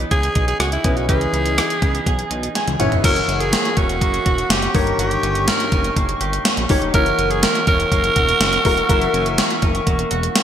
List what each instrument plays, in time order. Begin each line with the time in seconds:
Already playing: grand piano C#3 C#4 E4 B4 D#5, clean electric guitar E3 B3 D#4 G#4
0.11 analog synth bass C#2, clean electric guitar G#4, alto saxophone G#4, kick, closed hi-hat
0.23 closed hi-hat
0.35 analog synth bass B1, clean electric guitar D#4, kick, closed hi-hat
0.48 alto saxophone G#4, closed hi-hat
0.60 analog synth bass C#2, alto saxophone F#4, clean electric guitar G#4, cross-stick, closed hi-hat
0.72 alto saxophone E4, closed hi-hat
0.84 analog synth bass B1, grand piano C#3 C#4 E4 B4 D#5, clean electric guitar D#4, kick, closed hi-hat
0.97 alto saxophone F#4, closed hi-hat
1.08 analog synth bass C#2, grand piano E3 C#4 B4 D#5, clean electric guitar E3, alto saxophone G#4, kick, closed hi-hat
1.21 closed hi-hat
1.33 analog synth bass C#2, clean electric guitar B3, closed hi-hat
1.46 closed hi-hat
1.58 clean electric guitar D#4, cross-stick, closed hi-hat
1.70 closed hi-hat
1.82 analog synth bass C#2, clean electric guitar B3, kick, closed hi-hat
1.95 closed hi-hat
2.06 analog synth bass B1, clean electric guitar G#4, kick, closed hi-hat
2.19 closed hi-hat
2.30 analog synth bass B1, clean electric guitar D#4, closed hi-hat
2.43 closed hi-hat
2.55 clean electric guitar G#4, grand piano G#5, snare, closed hi-hat
2.67 analog synth bass C#2, closed hi-hat, high tom
2.79 analog synth bass F#1, grand piano C#4 E4 B4 C#5 E5, clean electric guitar D#4, closed hi-hat, mid tom
2.91 analog synth bass E1, closed hi-hat, floor tom
3.03 analog synth bass F#1, clean electric guitar E3, grand piano A#3 E4 F#4 C#5, woodwind section A#4 E5 F#5 C#6, alto saxophone A#4, kick, closed hi-hat, crash
3.16 closed hi-hat
3.28 analog synth bass F#1, clean electric guitar C#4, closed hi-hat
3.41 alto saxophone G#4, closed hi-hat
3.53 clean electric guitar A#3, snare, closed hi-hat
3.65 closed hi-hat
3.77 analog synth bass E1, clean electric guitar C#4, alto saxophone F#4, kick, closed hi-hat
3.89 closed hi-hat
4.01 analog synth bass F#1, clean electric guitar A#3, kick, closed hi-hat
4.14 closed hi-hat
4.26 analog synth bass E1, clean electric guitar F#4, kick, closed hi-hat
4.38 closed hi-hat
4.50 analog synth bass F#1, clean electric guitar C#4, alto saxophone G4, snare, closed hi-hat
4.62 closed hi-hat
4.74 analog synth bass G1, grand piano G2 A#3 D#4 G4 C#5, clean electric guitar D#3, woodwind section A#4 D#5 G5, kick, open hi-hat
4.87 closed hi-hat
4.99 analog synth bass G1, clean electric guitar D#3, alto saxophone G4, closed hi-hat
5.11 closed hi-hat
5.23 analog synth bass G1, clean electric guitar C#4, closed hi-hat
5.35 closed hi-hat
5.48 clean electric guitar A#3, alto saxophone A#4, snare, closed hi-hat
5.60 closed hi-hat
5.72 analog synth bass F#1, clean electric guitar C#4, kick, closed hi-hat
5.84 closed hi-hat
5.96 analog synth bass F#1, clean electric guitar A#3, kick, closed hi-hat
6.09 closed hi-hat
6.21 analog synth bass G1, clean electric guitar G4, closed hi-hat
6.33 closed hi-hat
6.45 clean electric guitar C#4, snare, closed hi-hat
6.57 analog synth bass A#1, closed hi-hat
6.69 analog synth bass G1, grand piano A#3 D#4 G4 C#5, clean electric guitar G4, kick, open hi-hat
6.82 analog synth bass E1, closed hi-hat
6.94 analog synth bass F#1, clean electric guitar E3, grand piano A#3 E4 F#4 C#5, alto saxophone A#4, woodwind section E5 F#5 C#6, kick, closed hi-hat
7.06 closed hi-hat
7.18 analog synth bass F#1, clean electric guitar C#4, closed hi-hat
7.31 alto saxophone G#4, closed hi-hat
7.43 clean electric guitar A#3, alto saxophone A#4, snare, closed hi-hat
7.55 closed hi-hat
7.67 analog synth bass E1, clean electric guitar C#4, alto saxophone A#4, kick, closed hi-hat
7.80 closed hi-hat
7.92 analog synth bass F#1, clean electric guitar A#3, kick, closed hi-hat
8.04 closed hi-hat
8.16 analog synth bass E1, clean electric guitar F#4, kick, closed hi-hat
8.29 closed hi-hat
8.40 analog synth bass F#1, clean electric guitar C#4, snare, closed hi-hat
8.53 closed hi-hat
8.65 analog synth bass E1, grand piano A#3 E4 F#4 A#4, clean electric guitar F#4, kick, open hi-hat
8.77 closed hi-hat
8.89 analog synth bass F#1, clean electric guitar E3, grand piano A#3 E4 F#4 E5, kick, closed hi-hat
9.02 closed hi-hat
9.14 analog synth bass F#1, clean electric guitar C#4, closed hi-hat
9.26 closed hi-hat
9.38 clean electric guitar A#3, snare, closed hi-hat
9.51 closed hi-hat
9.62 analog synth bass F#1, clean electric guitar C#4, kick, closed hi-hat
9.75 closed hi-hat
9.87 analog synth bass E1, clean electric guitar A#3, kick, closed hi-hat
9.99 closed hi-hat
10.11 analog synth bass E1, clean electric guitar F#4, closed hi-hat
10.23 closed hi-hat
10.35 clean electric guitar C#4, snare, closed hi-hat